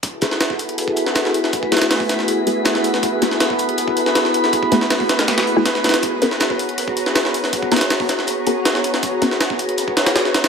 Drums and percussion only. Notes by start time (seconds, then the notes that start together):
0.03 kick, closed hi-hat
0.21 snare, closed hi-hat
0.31 snare
0.40 snare, closed hi-hat
0.50 kick, snare
0.59 closed hi-hat
0.69 closed hi-hat
0.78 closed hi-hat
0.88 kick
0.96 closed hi-hat
1.06 snare
1.15 snare, closed hi-hat
1.25 snare
1.34 closed hi-hat
1.44 snare, closed hi-hat
1.53 kick, closed hi-hat
1.63 kick
1.72 snare, closed hi-hat
1.77 snare, closed hi-hat
1.81 snare, closed hi-hat
1.90 snare, closed hi-hat, open hi-hat
2.00 kick
2.09 snare, closed hi-hat
2.19 snare
2.28 closed hi-hat
2.47 closed hi-hat
2.65 snare, closed hi-hat
2.75 snare
2.84 closed hi-hat
2.94 snare, closed hi-hat
3.03 kick, closed hi-hat
3.22 snare, closed hi-hat
3.31 snare
3.40 snare, closed hi-hat
3.50 kick, snare
3.59 closed hi-hat
3.69 closed hi-hat
3.78 closed hi-hat
3.88 kick
3.97 closed hi-hat
4.06 snare
4.15 snare, closed hi-hat
4.25 snare
4.34 closed hi-hat
4.44 snare, closed hi-hat
4.53 kick, closed hi-hat
4.63 kick
4.72 snare, closed hi-hat
4.81 snare
4.90 snare, closed hi-hat, open hi-hat
5.00 kick
5.09 snare, closed hi-hat
5.19 snare, closed hi-hat
5.27 snare, closed hi-hat
5.37 snare, closed hi-hat
5.47 closed hi-hat
5.57 snare
5.65 snare, closed hi-hat
5.75 snare
5.84 snare, closed hi-hat
5.89 snare, closed hi-hat
5.94 snare, closed hi-hat
6.02 kick, closed hi-hat
6.22 snare, closed hi-hat
6.31 snare
6.40 snare, closed hi-hat
6.50 kick, snare
6.59 closed hi-hat
6.69 closed hi-hat
6.78 closed hi-hat
6.88 kick
6.97 closed hi-hat
7.06 snare
7.15 snare, closed hi-hat
7.25 snare
7.34 closed hi-hat
7.44 snare, closed hi-hat
7.53 kick, closed hi-hat
7.63 kick
7.72 snare, closed hi-hat
7.76 snare, closed hi-hat
7.81 snare, closed hi-hat
7.90 snare, closed hi-hat, open hi-hat
8.00 kick
8.09 snare, closed hi-hat
8.19 snare
8.27 closed hi-hat
8.46 closed hi-hat
8.65 snare, closed hi-hat
8.75 snare
8.84 closed hi-hat
8.94 snare, closed hi-hat
9.03 kick, closed hi-hat
9.22 snare, closed hi-hat
9.31 snare
9.41 snare, closed hi-hat
9.50 kick, snare
9.59 closed hi-hat
9.69 closed hi-hat
9.78 closed hi-hat
9.88 kick
9.97 snare, closed hi-hat
10.06 snare, closed hi-hat
10.16 snare, closed hi-hat
10.25 snare
10.34 snare, closed hi-hat
10.44 snare, closed hi-hat